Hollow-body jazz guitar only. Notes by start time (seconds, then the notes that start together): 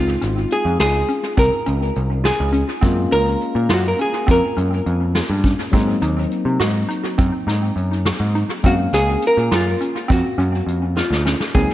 Already playing: F4
0.52 G#4
0.80 G#4
1.39 A#4
2.25 G#4
3.12 A#4
3.74 F#4
3.88 A#4
4.01 G#4
4.31 A#4
8.66 F#4
8.94 G#4
9.27 A#4
9.55 F4
10.12 F#4
10.97 F4
11.55 G#4